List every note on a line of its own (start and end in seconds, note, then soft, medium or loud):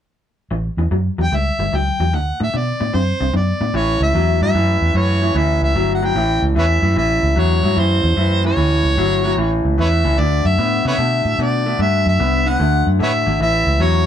0.51 0.69 A1 medium
0.51 0.75 A2 medium
0.51 0.76 E3 medium
0.77 0.86 E2 medium
0.77 0.90 A2 medium
0.77 0.91 E3 medium
0.91 1.09 F#2 medium
0.91 1.16 A2 medium
0.91 1.16 F#3 medium
1.18 1.27 E2 medium
1.18 1.30 A2 medium
1.18 1.31 F#3 medium
1.23 1.37 G5 medium
1.32 1.50 C#2 medium
1.32 1.56 A2 medium
1.32 1.57 G3 medium
1.32 1.78 E5 medium
1.58 1.67 G1 medium
1.58 1.71 A2 medium
1.58 1.71 G3 medium
1.72 1.90 C#2 medium
1.72 1.97 A2 medium
1.72 1.97 F#3 medium
1.72 2.16 G5 medium
2.00 2.13 E2 medium
2.00 2.12 A2 medium
2.00 2.12 F#3 medium
2.13 2.31 D2 medium
2.13 2.37 D3 medium
2.13 2.38 A3 medium
2.13 2.41 F#5 medium
2.40 2.49 A2 medium
2.40 2.52 D3 medium
2.40 2.52 A3 medium
2.40 2.58 E5 medium
2.54 2.72 B2 medium
2.54 2.78 D3 medium
2.54 2.78 B3 medium
2.54 2.98 D5 medium
2.80 2.89 A2 medium
2.80 2.92 D3 medium
2.80 2.92 B3 medium
2.94 3.12 F#2 medium
2.94 3.18 D3 medium
2.94 3.18 C4 medium
2.94 3.35 C5 medium
3.20 3.29 C2 medium
3.20 3.32 D3 medium
3.20 3.33 C4 medium
3.33 3.51 F#2 medium
3.33 3.58 D3 medium
3.33 3.58 B3 medium
3.33 3.78 D5 medium
3.61 3.69 A2 medium
3.61 3.73 D3 medium
3.61 3.73 B3 medium
3.74 3.98 A1 medium
3.74 4.12 A2 medium
3.74 4.12 E3 medium
3.74 4.02 C#5 medium
4.00 4.13 C#2 medium
4.00 4.40 E5 medium
4.14 4.39 E2 medium
4.14 4.39 A2 medium
4.14 4.39 F#3 medium
4.41 4.53 G2 medium
4.41 4.53 A2 medium
4.41 4.54 F#3 medium
4.41 4.98 E5 medium
4.54 4.79 F#2 medium
4.54 4.92 A2 medium
4.54 4.92 E3 medium
4.81 4.94 E2 medium
4.94 5.31 F#2 medium
4.94 5.19 A2 medium
4.94 5.19 E3 medium
4.94 5.39 C#5 medium
5.22 5.34 A2 medium
5.22 5.34 E3 medium
5.34 5.59 D2 medium
5.34 5.73 A2 medium
5.34 5.73 E3 medium
5.34 5.63 E5 medium
5.62 5.74 C#2 medium
5.62 5.92 E5 medium
5.75 6.11 G1 medium
5.75 6.00 A2 medium
5.75 6.00 F#3 medium
5.95 6.06 F#5 medium
6.02 6.14 A2 medium
6.02 6.15 F#3 medium
6.02 6.44 G5 loud
6.15 6.40 A1 medium
6.15 6.53 A2 medium
6.15 6.54 E3 medium
6.42 6.55 C#2 medium
6.55 6.80 E2 medium
6.55 6.80 A2 medium
6.55 6.80 E3 medium
6.55 6.65 B4 medium
6.55 6.65 C#5 medium
6.55 6.95 E5 medium
6.82 6.95 F#2 medium
6.82 6.95 A2 medium
6.82 6.95 E3 medium
6.96 7.20 A1 medium
6.96 7.34 A2 medium
6.96 7.34 E3 medium
6.96 7.40 E5 medium
7.23 7.35 C#2 medium
7.36 7.61 E2 medium
7.36 7.60 A2 medium
7.36 7.61 F#3 medium
7.36 7.81 C#5 medium
7.63 7.75 G2 medium
7.63 7.75 A2 medium
7.63 7.76 F#3 medium
7.76 8.01 F#2 medium
7.76 8.14 A2 medium
7.76 8.14 E3 loud
7.76 8.45 C5 medium
8.04 8.16 E2 medium
8.17 8.53 F#2 medium
8.17 8.41 A2 medium
8.17 8.41 E3 medium
8.44 8.56 A2 medium
8.44 8.56 E3 medium
8.44 9.62 C#5 medium
8.57 8.81 D2 medium
8.57 8.95 A2 medium
8.57 8.95 E3 medium
8.84 8.96 C#2 medium
8.97 9.33 G1 medium
8.97 9.22 A2 medium
8.97 9.22 F#3 medium
9.24 9.36 A2 medium
9.24 9.37 F#3 medium
9.37 9.62 A1 medium
9.37 9.75 A2 medium
9.37 9.76 E3 medium
9.65 9.77 C#2 medium
9.78 10.02 E2 medium
9.78 10.02 A2 medium
9.78 10.02 E3 medium
9.78 9.88 B4 medium
9.78 9.88 C#5 medium
9.78 10.21 E5 medium
10.04 10.17 C#2 medium
10.04 10.17 A2 medium
10.04 10.17 E3 medium
10.18 10.42 D2 medium
10.18 10.56 D3 medium
10.18 10.56 A3 medium
10.18 10.49 D5 medium
10.45 10.57 F#2 medium
10.45 10.86 E5 medium
10.58 10.83 A2 medium
10.58 10.83 D3 medium
10.58 10.83 B3 medium
10.85 10.97 C3 medium
10.85 10.97 D3 medium
10.85 10.98 B3 medium
10.85 10.94 B4 medium
10.85 10.96 C#5 medium
10.85 11.44 E5 medium
10.98 11.23 B2 medium
10.98 11.36 D3 medium
10.98 11.36 A3 medium
11.25 11.37 A2 medium
11.39 11.75 B2 medium
11.39 11.63 D3 medium
11.39 11.63 A3 medium
11.43 11.83 D5 medium
11.66 11.78 D3 medium
11.66 11.78 A3 medium
11.79 12.03 G2 medium
11.79 12.17 D3 medium
11.79 12.17 A3 medium
11.79 12.07 E5 loud
12.06 12.18 F#2 medium
12.06 12.50 E5 medium
12.19 12.56 C2 medium
12.19 12.44 D3 medium
12.19 12.44 B3 medium
12.46 12.58 D3 medium
12.46 12.59 B3 medium
12.46 12.88 F#5 loud
12.60 12.84 D2 medium
12.60 12.97 D3 medium
12.60 12.97 A3 medium
12.87 12.99 F#2 medium
12.99 13.24 A2 medium
12.99 13.24 D3 medium
12.99 13.24 A3 medium
12.99 13.12 B4 medium
12.99 13.11 C#5 medium
12.99 13.39 E5 medium
13.26 13.39 G#1 medium
13.26 13.39 D3 medium
13.26 13.39 A3 medium
13.40 13.64 A1 medium
13.40 13.78 A2 medium
13.40 13.78 E3 medium
13.40 13.84 E5 loud
13.67 13.79 C#2 medium
13.79 14.04 E2 medium
13.79 14.04 A2 medium
13.79 14.05 F#3 medium
13.79 14.06 C#5 medium